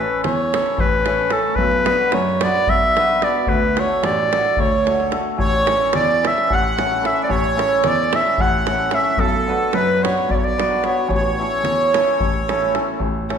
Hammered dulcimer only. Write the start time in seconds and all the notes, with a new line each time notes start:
0.00 A3 C#4 E4 A4
0.53 A3 C#4 E4 A4
1.06 A3 C#4 E4 A4
1.30 A3 C#4 E4 A4
1.85 B3 D4 F#4 B4
2.43 B3 D4 F#4 B4
2.97 B3 D4 F#4 B4
3.23 B3 D4 F#4 B4
3.77 A3 D4 F#4 A4
4.32 A3 D4 F#4 A4
4.85 A3 D4 F#4 A4
5.11 A3 D4 F#4 A4
5.66 A3 C#4 E4 A4
6.21 A3 C#4 E4 A4
6.77 A3 C#4 E4 A4
7.01 A3 C#4 E4 A4
7.56 A3 C#4 E4 A4
8.12 A3 C#4 E4 A4
8.66 A3 C#4 E4 A4
8.92 A3 C#4 E4 A4
9.47 B3 D4 F#4 B4
10.03 B3 D4 F#4 B4
10.58 B3 D4 F#4 B4
10.84 B3 D4 F#4 B4
11.39 A3 C#4 E4 A4
11.94 A3 C#4 E4 A4
12.48 A3 C#4 E4 A4
12.75 A3 C#4 E4 A4
13.29 A3 C#4 E4 A4